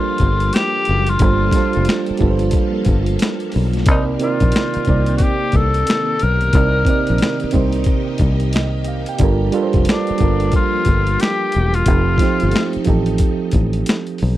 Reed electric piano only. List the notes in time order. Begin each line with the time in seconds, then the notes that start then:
Already playing: G3 D4 F4 A4 A#4 C5 A#5
1.20 G3 D4 F4 A4
1.24 C5
1.53 G3 D4 F4 A4
1.57 C5
2.19 G3 D4 F4 A4
2.24 B4
2.30 C5
3.86 C3 C4 D#4 A#4
3.91 D5
4.19 C3 C4 D#4 A#4
4.24 D5
4.86 C3 A#3 C4 D#4
4.90 D5
6.53 C3 C4 D#4 A#4
6.57 D5
6.86 C3 C4 D#4 A#4
6.91 D5
7.52 C3 C4 D#4 A#4
7.57 C5
8.54 D#5
8.88 F5
9.09 G5
9.19 G3 D4 F4 A4
9.23 A#4
9.52 G3 D4 F4 A4
9.57 B4
9.63 C5
10.18 G3 D4 F4 A4
10.23 A#4
11.86 F3 C4 D#4 G4 A4
12.19 F3 C4 D#4 G4
12.23 C5
12.85 F3 C4 D#4 G4
12.90 A4